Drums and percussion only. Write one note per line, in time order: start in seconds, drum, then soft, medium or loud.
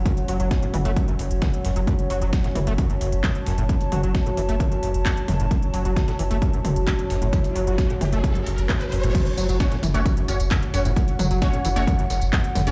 0.06 kick loud
0.06 closed hi-hat medium
0.06 mid tom medium
0.17 closed hi-hat soft
0.17 closed hi-hat medium
0.28 closed hi-hat medium
0.28 open hi-hat loud
0.40 closed hi-hat soft
0.51 kick loud
0.51 snare loud
0.51 closed hi-hat medium
0.63 closed hi-hat medium
0.74 closed hi-hat medium
0.74 open hi-hat loud
0.74 mid tom medium
0.85 closed hi-hat soft
0.96 kick loud
0.96 closed hi-hat medium
1.08 closed hi-hat medium
1.19 closed hi-hat medium
1.19 open hi-hat loud
1.31 closed hi-hat medium
1.42 kick loud
1.42 snare loud
1.42 closed hi-hat medium
1.42 mid tom loud
1.53 closed hi-hat medium
1.65 snare soft
1.65 closed hi-hat medium
1.65 open hi-hat loud
1.76 closed hi-hat medium
1.87 kick loud
1.87 closed hi-hat medium
1.87 mid tom medium
1.99 closed hi-hat soft
2.10 closed hi-hat medium
2.10 open hi-hat loud
2.22 closed hi-hat soft
2.33 kick loud
2.33 snare loud
2.33 closed hi-hat medium
2.44 snare medium
2.44 closed hi-hat soft
2.55 closed hi-hat medium
2.55 open hi-hat loud
2.55 mid tom loud
2.67 closed hi-hat medium
2.67 closed hi-hat soft
2.78 kick loud
2.78 closed hi-hat medium
2.90 closed hi-hat soft
3.01 closed hi-hat medium
3.01 open hi-hat loud
3.12 closed hi-hat medium
3.24 kick loud
3.24 snare loud
3.24 clap loud
3.24 closed hi-hat medium
3.24 mid tom loud
3.35 closed hi-hat soft
3.46 snare medium
3.46 closed hi-hat medium
3.46 open hi-hat loud
3.58 closed hi-hat medium
3.69 kick loud
3.69 closed hi-hat medium
3.81 closed hi-hat soft
3.92 closed hi-hat medium
3.92 open hi-hat loud
3.92 mid tom loud
4.03 closed hi-hat soft
4.15 kick loud
4.15 snare loud
4.15 closed hi-hat medium
4.26 closed hi-hat soft
4.37 closed hi-hat medium
4.37 open hi-hat loud
4.49 closed hi-hat soft
4.60 kick loud
4.60 closed hi-hat medium
4.60 mid tom medium
4.72 closed hi-hat soft
4.83 closed hi-hat medium
4.83 open hi-hat loud
4.94 closed hi-hat medium
5.05 kick loud
5.05 snare loud
5.05 clap loud
5.05 closed hi-hat medium
5.17 closed hi-hat medium
5.28 snare soft
5.28 closed hi-hat medium
5.28 open hi-hat loud
5.28 mid tom medium
5.40 closed hi-hat medium
5.51 kick loud
5.51 closed hi-hat medium
5.62 closed hi-hat soft
5.74 closed hi-hat medium
5.74 open hi-hat loud
5.85 closed hi-hat soft
5.96 kick loud
5.96 snare loud
5.96 closed hi-hat medium
5.96 mid tom medium
6.08 snare medium
6.08 closed hi-hat soft
6.19 closed hi-hat medium
6.19 open hi-hat loud
6.31 closed hi-hat soft
6.31 closed hi-hat medium
6.42 kick loud
6.42 closed hi-hat medium
6.53 closed hi-hat medium
6.65 closed hi-hat medium
6.65 open hi-hat loud
6.65 mid tom medium
6.76 closed hi-hat medium
6.87 kick loud
6.87 snare loud
6.87 clap loud
6.87 closed hi-hat medium
6.99 closed hi-hat medium
7.10 snare medium
7.10 closed hi-hat medium
7.10 open hi-hat loud
7.22 closed hi-hat medium
7.33 kick loud
7.33 closed hi-hat medium
7.33 mid tom medium
7.44 closed hi-hat soft
7.56 closed hi-hat medium
7.56 open hi-hat loud
7.67 closed hi-hat medium
7.78 kick loud
7.78 snare loud
7.78 closed hi-hat medium
7.90 closed hi-hat medium
8.01 closed hi-hat medium
8.01 open hi-hat loud
8.01 mid tom medium
8.12 closed hi-hat soft
8.12 closed hi-hat medium
8.24 kick loud
8.24 closed hi-hat medium
8.35 closed hi-hat medium
8.46 closed hi-hat medium
8.46 open hi-hat loud
8.58 closed hi-hat medium
8.69 kick loud
8.69 snare loud
8.69 clap loud
8.69 closed hi-hat medium
8.69 mid tom medium
8.81 snare soft
8.81 closed hi-hat medium
8.92 closed hi-hat medium
8.92 open hi-hat loud
9.03 closed hi-hat soft
9.03 closed hi-hat medium
9.15 kick loud
9.15 closed hi-hat medium
9.15 mid tom medium
9.15 tambourine soft
9.15 crash loud
9.26 closed hi-hat medium
9.37 closed hi-hat medium
9.37 open hi-hat loud
9.37 tambourine medium
9.49 closed hi-hat medium
9.49 tambourine soft
9.60 kick loud
9.60 snare loud
9.60 closed hi-hat medium
9.60 tambourine soft
9.72 snare medium
9.72 closed hi-hat medium
9.83 closed hi-hat medium
9.83 open hi-hat loud
9.83 mid tom medium
9.83 tambourine medium
9.94 closed hi-hat soft
9.94 closed hi-hat medium
9.94 tambourine soft
10.06 kick loud
10.06 closed hi-hat medium
10.06 tambourine soft
10.17 closed hi-hat medium
10.28 closed hi-hat medium
10.28 open hi-hat loud
10.28 tambourine medium
10.40 closed hi-hat medium
10.40 tambourine soft
10.51 kick loud
10.51 snare loud
10.51 clap loud
10.51 closed hi-hat medium
10.51 mid tom medium
10.51 tambourine soft
10.63 closed hi-hat medium
10.74 snare medium
10.74 closed hi-hat medium
10.74 open hi-hat loud
10.74 tambourine medium
10.85 closed hi-hat medium
10.85 tambourine soft
10.96 kick loud
10.96 closed hi-hat medium
10.96 tambourine soft
11.08 closed hi-hat soft
11.08 closed hi-hat medium
11.19 closed hi-hat medium
11.19 open hi-hat loud
11.19 mid tom medium
11.19 tambourine medium
11.31 closed hi-hat medium
11.31 tambourine soft
11.42 kick loud
11.42 snare loud
11.42 closed hi-hat medium
11.42 tambourine soft
11.53 closed hi-hat medium
11.65 closed hi-hat medium
11.65 open hi-hat loud
11.65 tambourine medium
11.76 closed hi-hat soft
11.76 closed hi-hat medium
11.76 tambourine soft
11.87 kick loud
11.87 closed hi-hat medium
11.87 mid tom medium
11.87 tambourine soft
11.99 closed hi-hat medium
12.10 closed hi-hat medium
12.10 open hi-hat loud
12.10 tambourine medium
12.21 closed hi-hat medium
12.21 tambourine soft
12.33 kick loud
12.33 snare loud
12.33 clap loud
12.33 closed hi-hat medium
12.33 tambourine soft
12.44 closed hi-hat medium
12.55 snare soft
12.55 closed hi-hat medium
12.55 open hi-hat loud
12.55 mid tom loud
12.55 tambourine medium
12.67 closed hi-hat medium
12.67 tambourine soft